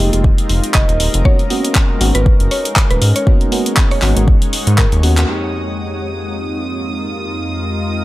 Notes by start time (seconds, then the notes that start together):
Already playing: G#3 A#3 C4 D#4 F4 G4 A#4 D#5
0.00 F1 G#3 A#3 D#4 G4
0.13 F1 G#3 A#3 D#4 G4, closed hi-hat
0.24 kick
0.38 closed hi-hat
0.49 F1, open hi-hat
0.64 closed hi-hat
0.74 F1 D#5, kick, clap
0.89 D#1, closed hi-hat
1.00 open hi-hat
1.14 F1, closed hi-hat
1.25 G#3 A#3 B3 C#4 D#4 F#4 A#4 C#5, kick
1.39 closed hi-hat
1.50 A#3 B3 C#4 F#4, open hi-hat
1.57 G#3
1.64 closed hi-hat
1.75 kick, clap
2.01 G#1 A#3 B3 C#4 F#4, open hi-hat
2.15 G#1 A#3 B3 C#4 F#4 B4, closed hi-hat
2.20 C#5
2.26 kick
2.40 F#1, closed hi-hat
2.51 C#5, open hi-hat
2.65 closed hi-hat
2.76 kick, clap
2.89 D#1 B4 F#5, closed hi-hat
3.02 G#2, open hi-hat
3.16 C#5, closed hi-hat
3.27 A#3 B3 C#4 F#4 G#4, kick
3.41 closed hi-hat
3.52 A#3 B3 C#4 F#4, open hi-hat
3.66 closed hi-hat
3.77 kick, clap
3.91 C#5, open hi-hat
4.02 G#1 A#3 B3 C#4 F#4, clap, open hi-hat
4.16 G#1 A#3 B3 C#4 F#4, closed hi-hat
4.28 kick
4.42 closed hi-hat
4.53 open hi-hat
4.67 G#2, closed hi-hat
4.78 A#4, kick, clap
4.92 D#2, closed hi-hat
5.03 A#3 B3 C#4 F#4, open hi-hat
5.17 A#3 B3 C#4 F#4, clap, closed hi-hat
5.28 F2 G#3 A#3 C4 D#4 F4 G4 A#4 D#6
5.99 A#4
6.19 D#5
7.11 G5